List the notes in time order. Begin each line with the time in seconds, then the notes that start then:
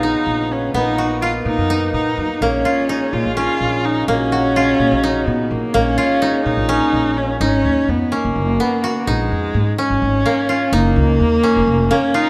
Already playing: A#1 C#3 B3 D#4 F4
0.03 D#4
0.27 A#1
0.52 C#4
0.74 A#1 A#3 B3 D#4
0.98 F#4
1.21 F4
1.45 A#2 D#4
1.58 F#2
1.70 D#4
1.93 A#2 D#4
2.17 F#2
2.41 A#1 A#2 G#3 A#3 C#4
2.65 F4
2.89 D#4
3.13 A#2 F4
3.25 A#1
3.36 C#4 F4
3.61 A#1
3.85 D#4
4.08 A#1 C#3 F#3 A#3 C#4 D#4
4.32 F#4
4.56 F4
4.79 A#2
4.91 A#1
5.04 D#4
5.27 A#2 B3
5.50 A#1 A#3
5.73 A#1 A#2 G#3 A#3 C#4
5.98 F4
6.22 D#4
6.45 A#2 D#4
6.57 A#1
6.69 C#4
6.93 A#1
7.17 C#4
7.40 G#1 C#4 D#4
7.64 D#2
7.88 F2 B3
8.12 A#3 C#4
8.25 F#1
8.36 F#1
8.60 B3
8.84 F#4
9.07 A#1 G#3 D#4
9.32 F2
9.54 G#2
9.78 C#4
9.90 G#1
10.02 G#1
10.26 A#3
10.49 F4
10.72 F#1 A#3 D#4
10.96 C#2
11.20 D#2
11.43 C#4
11.56 F1
11.67 F1
11.91 A#3 C#4
12.14 D#4 F4